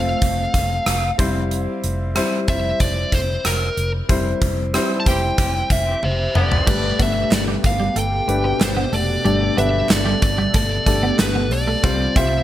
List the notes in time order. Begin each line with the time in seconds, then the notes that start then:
Already playing: F1 A3 C4 F4 A4 C5 F5
0.22 F1, kick, closed hi-hat
0.54 F1, kick, closed hi-hat
0.86 F1, cross-stick, closed hi-hat
1.18 F1 G3 C4 E4 C5, kick, closed hi-hat
1.51 closed hi-hat
1.84 F1, closed hi-hat
2.15 G3 C4 E4 C5, cross-stick, closed hi-hat
2.48 F1 G3 C4 E4 C5 E5, kick, closed hi-hat
2.80 F1 D5, kick, closed hi-hat
3.12 F1 C5, kick, closed hi-hat
3.45 F1 A#4, cross-stick, closed hi-hat
3.77 F1, closed hi-hat
4.09 F1 G3 C4 E4 C5, kick, closed hi-hat
4.42 F1, kick, closed hi-hat
4.74 G3 C4 E4 C5, cross-stick, closed hi-hat
5.00 A5
5.05 F1 E3 G3 C4 E4 G4 C5 G5, kick, closed hi-hat
5.38 F1 E3 C4 G4, kick, closed hi-hat
5.70 F1 E5, kick, closed hi-hat
5.86 E3 C4 G4
6.03 F1 C5 E5, high tom
6.34 F1 D3 B3 G4 D5, mid tom
6.52 floor tom
6.67 G1 G2 B2 G3 A3 D4 G4 B4, kick, crash
6.83 muted clean electric guitar stroke
6.99 G1 A3 B3 D4 G4 B4 E5, kick, closed hi-hat
7.31 G1 D5, snare, clap, closed hi-hat
7.48 G3
7.64 G1 F5, muted clean electric guitar stroke, kick, closed hi-hat
7.80 G3
7.96 G1 A3 G5, closed hi-hat
8.28 G1 A3 D4 G4 B4, muted clean electric guitar stroke, closed hi-hat
8.44 B3
8.60 G1 C5, muted clean electric guitar stroke, snare, clap, closed hi-hat
8.77 B3
8.92 F1 A3 D5, open hi-hat
9.24 G1 G2 G3 A3 D4 G4 A4 D5, closed hi-hat
9.41 muted clean electric guitar stroke
9.57 G1 A3 B3 D4 G4 B4 E5, closed hi-hat
9.89 G1 D5, snare, clap, closed hi-hat
10.06 G3
10.22 G1 D5, muted clean electric guitar stroke, kick, closed hi-hat
10.38 G3
10.54 G1 A3 D5, kick, closed hi-hat
10.86 G1 A3 D4 G4 A4, muted clean electric guitar stroke, kick, closed hi-hat
11.03 B3
11.19 G1 B4, snare, clap, closed hi-hat
11.35 B3
11.51 B1 D5, muted clean electric guitar stroke, open hi-hat
11.68 A3
11.83 C2 C3 G3 C4 F4 C5, kick, closed hi-hat
12.00 muted clean electric guitar stroke
12.16 C2 G3 C4 F4 C5 E5, kick, closed hi-hat